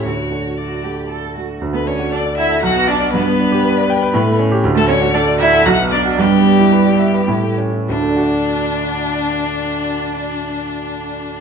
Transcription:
X:1
M:3/4
L:1/16
Q:1/4=115
K:D
V:1 name="Violin"
c4 d4 z4 | z B c2 d2 e2 f2 d2 | B8- B2 z2 | z A c2 d2 e2 f2 d2 |
G8- G2 z2 | D12- | D12 |]
V:2 name="Cello"
F4 F2 G2 A2 F2 | z B, C2 D2 E2 F2 D2 | B,8- B,2 z2 | z A, C2 D2 E2 F2 D2 |
G,8- G,2 z2 | D12- | D12 |]
V:3 name="Grand piano"
D,,2 [A,DF]4 [A,DF]4 [A,DF]2 | D,, A, D F A d f A B,,, B, D F | G,, B, D G B d g B A,, A, C G | D,, A, D F A d f A B,,, B, D F |
G,, B, D E B d e B A,, A, C E | [D,,D,A,DFd]12- | [D,,D,A,DFd]12 |]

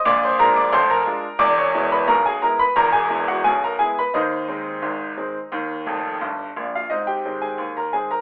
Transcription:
X:1
M:2/4
L:1/16
Q:1/4=88
K:Ab
V:1 name="Grand piano"
[=d=d'] [cc'] [Bb] [dd'] [cc'] [Bb]3 | [=d=d'] [_d_d']2 [=B=b] [_B_b] [^G^g] [Bb] [=B=b] | [Bb] [^G^g]2 [_G_g] [^G^g] [Bb] [Gg] [=B=b] | [Ece]8- |
[Ece]4 z3 [Ff] | [Ee] [Gg]2 [Aa]2 [Bb] [Aa] [Bb] |]
V:2 name="Grand piano" clef=bass
[B,,,B,,]2 [A,=DF]2 [F,,,F,,]2 [A,DF]2 | [=E,,,=E,,]2 [^G,=B,=E]2 [=B,,,=B,,]2 [G,B,E]2 | [=E,,,=E,,]2 [^G,=B,=E]2 [=B,,,=B,,]2 [G,B,E]2 | [E,,E,]2 [E,A,C]2 [A,,,A,,]2 [E,A,C]2 |
[E,,E,]2 [F,,,F,,]2 [G,,,G,,]2 [B,,,B,,]2 | [A,,C]2 [E,A,C]2 E,,2 [E,A,C]2 |]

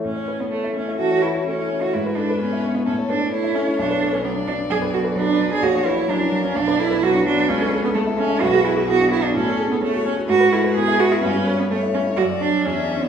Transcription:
X:1
M:4/4
L:1/16
Q:1/4=128
K:A
V:1 name="Violin"
z8 A4 c4 | B8 A4 c4- | c4 d8 B4 | c4 ^A4 d4 B4- |
B4 A4 B4 G4 | A4 c4 B8- | B4 c4 d4 e4 |]
V:2 name="Grand piano"
A,, c B c A, E A, E E, c B c A, E A, E | G,, B A B B, E B, E A,, c B c A, E A, E | B,,, B A B F, D F, D F,, B A B F, D F, D | ^A,,, c B c F, C F, C B,,, B =A B F, D F, D |
C,, A G A A, E A, E B,,, G F G B, D B, D | A,, A G A C F C F G,, B A B B, E B, E | =G,, c B c A, E A, E F,, d c d E,, d c d |]
V:3 name="Cello"
C3 B, A,2 C2 F2 E2 C3 F | E2 D2 C3 B, C2 D2 E2 C2 | D3 C B,2 D2 G2 F2 D3 G | F2 E2 D3 C D2 E2 F2 D2 |
C3 B, A,2 C2 F2 E2 F2 E D | C3 B, A,2 C2 F2 E2 G2 F E | C3 B, A,2 C2 F2 D2 C3 B, |]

